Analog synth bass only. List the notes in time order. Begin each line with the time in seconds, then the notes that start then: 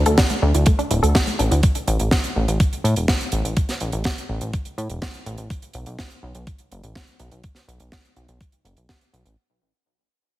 0.06 D2
0.42 D2
0.55 D2
0.91 D1
1.03 D2
1.39 A1
1.51 D2
1.88 A1
2.00 A1
2.36 A1
2.48 A1
2.84 A2
2.96 E1
3.33 A1
3.45 A1
3.81 A1
3.93 A1
4.29 A1
4.41 A1
4.78 A2
4.90 E1
5.26 A1
5.38 A1
5.74 B1
5.87 B1
6.23 B1
6.35 B1
6.71 F#1
6.83 A1
7.20 B1
7.32 B1
7.68 B1
7.80 B1
8.16 B1
8.29 B1
8.65 F#1
8.77 B1
9.13 B1
9.25 A1